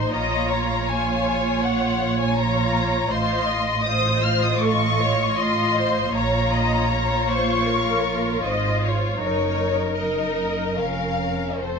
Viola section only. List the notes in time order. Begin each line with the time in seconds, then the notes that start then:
Already playing: C5
0.12 D#5
0.49 C#5
0.85 C#5
3.12 C5
3.48 D#5
3.86 C5
4.61 A4
5.00 C#5
5.39 D#5
5.76 C5
6.13 C#5
6.52 D#5
6.90 C#5
7.29 C5
7.67 A#4
8.46 D#5
8.85 C#5
9.24 A#4
11.61 C5